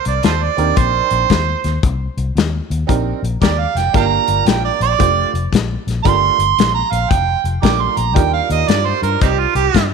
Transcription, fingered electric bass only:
0.06 C2
0.24 D#2
0.58 D#2
0.77 A#1
1.11 A#1
1.30 D#2
1.64 D#2
1.83 C2
2.17 C2
2.36 D#2
2.70 D#2
2.89 A#1
3.23 A#1
3.42 D#2
3.75 F1
3.94 G1
4.28 G1
4.46 A#1
4.80 A#1
5.00 F1
5.34 F1
5.52 A#1
5.87 A#1
6.05 G1
6.39 G1
6.59 A#1
6.92 A#1
7.11 F1
7.44 F1
7.63 A#1
7.97 A#1
8.16 D#2
8.50 D#2
8.68 G2
9.02 G2
9.22 C2
9.55 C2
9.75 G2

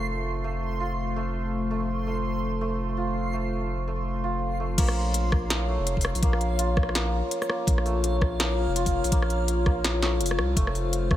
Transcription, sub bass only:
Already playing: F1
4.78 A#1
5.79 F1
6.15 A#1
6.23 A#1
7.67 A#1
8.68 F1
9.04 A#1
9.12 A#1
10.20 F1
10.38 C2
10.56 F1

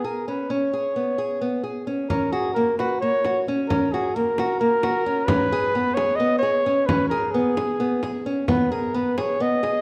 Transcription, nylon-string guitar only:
0.04 G#4
0.28 C#4
0.50 C#4
0.73 G#4
0.96 B3
1.18 G#4
1.41 B3
1.64 G#4
1.87 C#4
2.10 C#4
2.33 F#4
2.56 A#3
2.80 F#4
3.02 A#3
3.25 F#4
3.48 C#4
3.70 C#4
3.94 F#4
4.16 A#3
4.39 F#4
4.61 A#3
4.83 F#4
5.06 C#4
5.29 C#4
5.52 G#4
5.75 B3
5.97 G#4
6.20 B3
6.43 G#4
6.66 C#4
6.89 C#4
7.11 G#4
7.34 B3
7.57 G#4
7.80 B3
8.03 G#4
8.26 C#4
8.48 B3
8.72 G#4
8.94 B3
9.18 G#4
9.40 B3
9.63 G#4

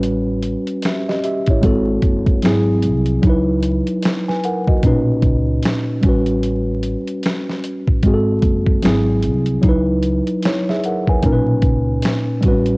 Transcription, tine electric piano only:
Already playing: G3 C#4 F#4 B4
0.86 G4 E5
1.09 G4 D#5
1.24 G4 E5
1.50 E4 C#5
1.61 G#3 C4 F#4 A4
2.43 F#3 C4 E4 G#4
3.22 F#3 D#4
3.27 E4 B4
4.28 B4 G#5
4.45 A#4 F#5
4.68 F#4 D#5
4.84 A#2 C#4 D#4 B4
6.01 G3 C#4
6.06 F#4 B4
8.04 G#3 C4 F#4 G#4
8.14 A4
8.82 F#3 C4 E4 G#4
9.62 F#3 D#4
9.67 E4 B4
10.46 E4 C#5
10.70 G#4 E5
10.86 A#4 F#5
11.09 B4 G#5
11.22 A#2 C#4 D#4 A#4
11.32 B4
12.41 G3 C4
12.46 F#4 B4
12.50 C#4

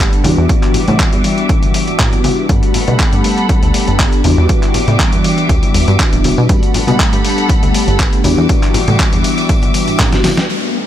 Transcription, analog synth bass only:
Already playing: G1
0.24 E2
0.38 E2
0.88 A2
1.13 E2
1.88 A2
1.99 A2
2.49 G2
2.88 B2
3.13 G2
3.49 D2
3.63 D2
3.88 G1
4.24 E2
4.38 E2
4.88 A2
5.13 E2
5.49 D2
5.75 E1
5.88 G2
6.13 E1
6.38 B2
6.49 G2
6.88 B2
7.13 G2
7.49 D2
7.63 D2
7.88 G1
8.25 E2
8.38 E2
8.88 A2
9.13 E2
9.88 A2
9.99 A2

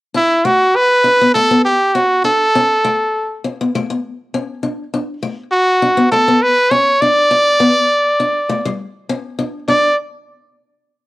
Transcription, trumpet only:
0.16 E4
0.45 F#4
0.76 B4
1.34 A4
1.65 G4
1.95 F#4
2.24 A4
5.52 F#4
6.11 A4
6.42 B4
6.71 C#5
7.01 D5
9.69 D5

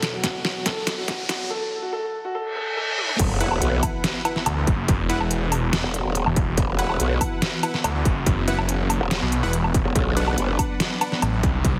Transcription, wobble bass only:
3.19 E1
3.62 B1
5.84 E1
6.05 E1
6.58 E1
7.00 B1
9.01 E1
9.85 E1
9.96 B1
10.38 F#1

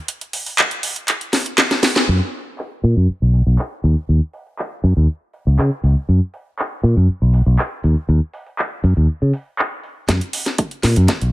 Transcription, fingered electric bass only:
2.09 F#2
2.84 A#2
2.97 F#2
3.09 muted fingered electric bass stroke
3.22 B1
3.47 B1
3.84 D#2
4.09 D#2
4.84 F#2
4.97 D#2
5.47 C#2
5.59 C#3
5.83 C#2
6.09 F#2
6.83 A#2
6.97 F#2
7.09 muted fingered electric bass stroke
7.22 B1
7.46 B1
7.84 D#2
8.09 D#2
8.84 F#2
8.97 D#2
9.22 C#3
10.09 F#2
10.84 A#2
10.97 F#2
11.09 muted fingered electric bass stroke
11.22 B1

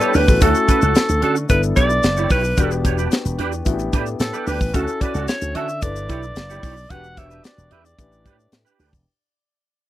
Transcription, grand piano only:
Already playing: G3 B3 D4 E4
0.02 A4 C#5
0.15 G4 B4
0.28 F#4 A4
0.41 A3 C#4 E4 F#4
1.49 B3 D4 E4 A4
2.57 B3 D4 F#4 G4
3.65 B3 D4 E4 F#4
3.73 G4
4.74 C#4 E4 F#4 A4
5.82 D4 E4 A4 B4
6.90 D4 F#4 G4 B4
7.98 D4 E4 G4 B4

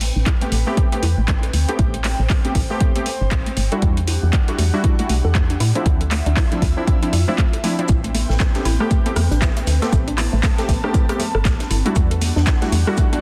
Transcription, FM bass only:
Already playing: A1
0.16 A1
0.52 A1
1.03 E2
1.18 A1
1.53 D2
1.79 A1
2.19 A1
2.55 A1
3.21 G1
3.32 A1
3.57 G1
3.82 E2
4.23 E2
4.59 E2
5.10 B1
5.25 E2
5.60 A2
5.86 D2
6.26 D2
6.62 D2
7.13 F2
7.89 A1
8.30 A1
8.65 A1
9.16 E2
9.31 A1
9.67 D2
9.93 A1
10.33 A1
10.69 A1
11.35 G1
11.45 A1
11.71 G1
11.96 E2
12.36 E2
12.72 E2

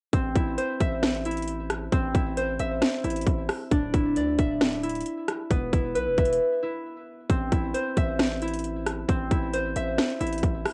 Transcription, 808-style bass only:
0.13 A1
0.36 A1
0.80 A1
1.92 A1
2.15 A1
2.59 A1
3.04 A1
3.27 A1
3.71 D1
3.94 D1
4.16 D2
4.39 D1
5.51 E1
5.73 E1
5.95 B1
6.07 E1
6.18 E1
7.30 A1
7.52 A1
7.97 A1
9.09 A1
9.31 A1
9.76 A1
10.21 A1
10.43 A1

